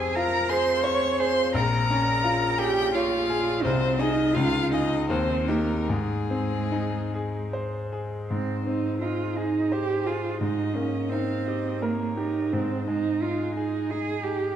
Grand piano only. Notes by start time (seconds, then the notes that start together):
Already playing: F2 C4
0.16 F4
0.50 G#4
0.84 C5
1.20 G#4
1.54 A#1
1.90 C#4
2.24 F4
2.60 G#4
2.95 C#5
3.30 G#4
3.65 C2
4.00 D#4 G#4
4.36 C#2
4.72 F4 G#4
5.10 D#2
5.48 D#4 G4
5.89 G#2
6.30 C4
6.72 D#4
7.14 G#4
7.53 C5
7.92 G#4
8.30 G#2
8.67 C4
9.02 D#4
9.37 G#4
9.72 C5
10.07 G#4
10.41 G#2
10.75 A#3
11.12 D#4
11.48 G4
11.82 A#4
12.17 G4
12.53 G#2
12.88 G#3
13.22 D#4
13.57 G#4
13.91 D#4
14.25 G#4